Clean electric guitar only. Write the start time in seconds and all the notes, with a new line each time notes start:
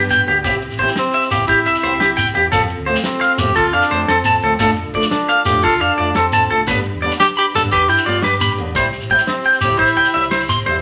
0.11 G5
0.28 G4
0.44 G4
0.79 C5
1.14 E5
1.49 G4
1.66 E5
1.83 C5
2.00 G4
2.17 G5
2.35 G4
2.52 A4
2.86 C5
3.21 F5
3.56 A4
3.73 F5
3.91 C5
4.08 A4
4.25 A5
4.44 A4
4.60 A4
4.95 D5
5.29 F5
5.64 A4
5.81 F5
5.98 D5
6.16 A4
6.33 A5
6.50 A4
6.68 B4
7.02 D5
7.37 B5
7.72 B4
7.90 G5
8.06 D5
8.24 B4
8.41 B5
8.76 C5
9.11 G5
9.46 G5
9.79 C5
9.97 G5
10.14 E5
10.31 C5
10.49 C6
10.66 C5